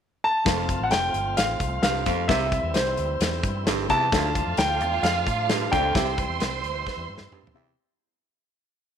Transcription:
0.24 0.87 A5 loud
0.45 0.76 F1 loud
0.45 0.64 F2 medium
0.45 2.28 F3 medium
0.45 2.28 A3 medium
0.45 1.15 C4 medium
0.45 2.27 C4 medium
0.45 2.28 F4 medium
0.45 1.16 A4 medium
0.45 1.16 F5 medium
0.45 kick loud
0.45 snare loud
0.45 closed hi-hat medium
0.69 kick medium
0.69 closed hi-hat medium
0.80 0.90 A1 medium
0.80 0.91 F#5 medium
0.91 1.11 F1 medium
0.91 1.39 G5 medium
0.91 snare loud
0.91 closed hi-hat medium
1.14 1.34 G1 medium
1.14 closed hi-hat medium
1.37 1.57 A1 medium
1.37 1.81 F5 medium
1.37 snare loud
1.37 closed hi-hat loud
1.60 1.80 C2 medium
1.60 kick medium
1.60 closed hi-hat medium
1.82 2.03 C2 loud
1.82 2.02 G2 medium
1.82 2.26 F5 medium
1.82 snare loud
1.82 closed hi-hat medium
2.06 2.25 F2 medium
2.06 2.26 F2 medium
2.06 2.24 C4 medium
2.06 2.24 A4 medium
2.06 2.24 F5 medium
2.06 kick medium
2.06 snare soft
2.06 closed hi-hat medium
2.28 2.59 C2 medium
2.28 2.94 C3 medium
2.28 2.48 C3 medium
2.28 4.10 E3 medium
2.28 4.10 G3 medium
2.28 2.99 C4 medium
2.28 4.10 C4 medium
2.28 4.10 E4 medium
2.28 2.99 G4 medium
2.28 2.76 E5 medium
2.28 2.99 E5 medium
2.28 kick loud
2.28 snare loud
2.28 closed hi-hat medium
2.52 kick medium
2.52 closed hi-hat medium
2.63 2.75 E2 medium
2.74 2.95 C2 medium
2.74 3.62 C5 medium
2.74 snare loud
2.74 closed hi-hat medium
2.97 3.18 D2 medium
2.97 closed hi-hat medium
3.20 3.41 E2 medium
3.20 snare loud
3.20 closed hi-hat loud
3.43 3.64 G2 medium
3.43 kick loud
3.43 closed hi-hat medium
3.66 3.86 G1 medium
3.66 3.85 G2 medium
3.66 snare loud
3.66 closed hi-hat medium
3.89 4.08 E2 medium
3.89 4.10 C3 medium
3.89 4.07 C4 medium
3.89 4.07 G4 medium
3.89 4.07 E5 medium
3.89 4.54 A5 loud
3.89 kick medium
3.89 closed hi-hat medium
4.11 4.42 D2 medium
4.11 4.31 D2 medium
4.11 4.77 D3 medium
4.11 5.94 F3 medium
4.11 5.94 A3 medium
4.11 4.81 D4 medium
4.11 5.94 D4 medium
4.11 5.92 F4 medium
4.11 5.94 F4 medium
4.11 4.82 A4 medium
4.11 4.18 E5 medium
4.11 5.92 F5 loud
4.11 kick loud
4.11 snare loud
4.11 closed hi-hat medium
4.18 4.85 F5 medium
4.35 kick loud
4.35 closed hi-hat medium
4.47 4.57 F2 medium
4.57 4.81 D2 loud
4.57 5.05 G5 medium
4.57 snare loud
4.57 closed hi-hat medium
4.80 5.01 E2 medium
4.80 closed hi-hat medium
5.03 5.23 F2 medium
5.03 5.74 F5 medium
5.03 snare medium
5.03 closed hi-hat loud
5.26 5.66 A2 medium
5.26 kick medium
5.26 closed hi-hat medium
5.49 5.68 G2 medium
5.49 snare loud
5.49 closed hi-hat medium
5.71 5.92 C#2 medium
5.71 5.91 F2 medium
5.71 5.89 D4 medium
5.71 5.90 A4 medium
5.71 5.90 F5 medium
5.71 7.27 G5 medium
5.71 kick loud
5.71 snare soft
5.71 closed hi-hat medium
5.94 6.25 C2 loud
5.94 6.59 C3 medium
5.94 6.14 C3 medium
5.94 7.76 E3 medium
5.94 7.76 G3 medium
5.94 6.64 C4 medium
5.94 7.76 C4 medium
5.94 7.76 E4 medium
5.94 6.65 G4 medium
5.94 7.73 C5 medium
5.94 6.65 E5 medium
5.94 7.73 C6 loud
5.94 kick loud
5.94 snare loud
5.94 closed hi-hat medium
6.18 kick loud
6.18 closed hi-hat medium
6.29 6.39 E2 medium
6.40 6.60 C2 loud
6.40 snare loud
6.40 closed hi-hat medium
6.63 6.83 D2 medium
6.63 closed hi-hat medium
6.87 kick medium
6.87 snare medium
6.97 7.07 E2 medium
7.09 7.19 G2 loud
7.18 7.30 G2 medium
7.18 snare medium
7.31 7.50 G2 medium
7.31 muted fingered electric bass stroke soft
7.31 mid tom medium
7.43 7.53 A#2 medium
7.47 floor tom loud
7.54 7.73 E2 medium
7.54 7.74 C3 medium
7.54 7.72 C4 medium
7.54 7.72 G4 medium
7.54 7.72 E5 loud

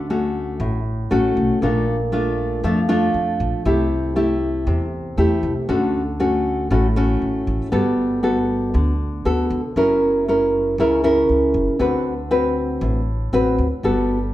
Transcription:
0.00 0.57 D2 medium
0.00 0.58 D3 soft
0.10 0.78 A3 soft
0.10 0.78 C#4 medium
0.10 0.79 F#4 medium
0.60 1.08 A1 medium
0.60 1.60 A2 medium
1.11 1.35 A1 medium
1.11 1.58 A3 medium
1.11 1.58 C#4 medium
1.11 1.58 F#4 medium
1.37 1.49 B1 medium
1.62 2.60 A#1 medium
1.62 2.62 A#2 medium
1.62 1.95 A3 medium
1.62 1.96 D4 medium
1.62 1.96 F4 medium
2.12 2.60 A3 soft
2.12 2.60 D4 medium
2.12 2.60 F4 medium
2.64 3.11 F2 medium
2.64 3.63 F3 medium
2.64 2.79 A3 medium
2.64 2.79 D4 medium
2.64 2.79 F4 medium
2.89 3.61 A3 medium
2.89 3.61 D4 medium
2.89 3.62 F4 medium
3.14 3.38 F2 medium
3.40 3.52 A#1 medium
3.65 4.63 C2 medium
3.65 4.65 C3 medium
3.65 4.13 A3 medium
3.65 4.13 E4 medium
3.65 4.13 G4 medium
4.16 4.85 A3 medium
4.16 4.85 E4 medium
4.16 4.85 G4 medium
4.67 5.14 E2 medium
4.67 5.67 C3 medium
5.18 5.42 E2 medium
5.18 5.52 A3 medium
5.18 5.52 E4 medium
5.18 5.53 G4 medium
5.43 5.55 C2 medium
5.69 6.67 D2 medium
5.69 6.68 D3 medium
5.69 6.02 A3 soft
5.69 6.02 C#4 soft
5.69 6.02 F#4 medium
6.20 6.67 A3 soft
6.20 6.67 C#4 medium
6.20 6.67 F#4 medium
6.70 7.18 A1 medium
6.70 7.70 A2 medium
6.70 6.86 A3 medium
6.70 6.86 C#4 soft
6.70 6.86 F#4 medium
6.96 7.69 A3 medium
6.96 7.69 C#4 medium
6.96 7.69 F#4 medium
7.22 7.46 A1 medium
7.47 7.59 A1 medium
7.72 8.70 G1 medium
7.72 8.72 G3 soft
7.72 8.19 B3 medium
7.72 8.19 F#4 soft
7.72 8.20 A4 medium
8.23 8.92 B3 soft
8.23 8.92 F#4 soft
8.23 8.92 A4 medium
8.74 9.22 D2 loud
8.74 9.74 D3 medium
9.25 9.49 D2 medium
9.25 9.60 B3 soft
9.25 9.60 F#4 soft
9.25 9.60 A4 medium
9.51 9.63 C#2 medium
9.76 10.74 F#1 medium
9.76 10.76 F#3 medium
9.76 10.23 C#4 medium
9.76 10.24 E4 medium
9.76 10.24 A#4 medium
10.28 10.75 C#4 soft
10.28 10.75 E4 soft
10.28 10.75 A#4 medium
10.78 11.26 C#2 medium
10.78 11.78 C#3 medium
10.78 11.00 C#4 medium
10.78 11.00 E4 medium
10.78 11.01 A#4 medium
11.04 11.76 C#4 medium
11.04 11.76 E4 medium
11.04 11.76 A#4 medium
11.29 11.53 C#2 medium
11.54 11.66 F#1 medium
11.79 12.78 D2 medium
11.79 12.79 D3 medium
11.79 12.13 C4 medium
11.79 12.13 F#4 soft
11.79 12.13 B4 medium
12.31 12.99 C4 medium
12.31 13.00 F#4 medium
12.31 13.00 B4 medium
12.81 13.29 A1 loud
12.81 13.81 A2 medium
13.33 13.56 A1 medium
13.33 13.66 C4 medium
13.33 13.66 F#4 medium
13.33 13.66 B4 medium
13.58 13.70 D2 medium
13.83 14.34 G1 medium
13.83 14.34 G3 medium
13.83 14.17 B3 medium
13.83 14.17 F#4 soft
13.83 14.17 A4 medium

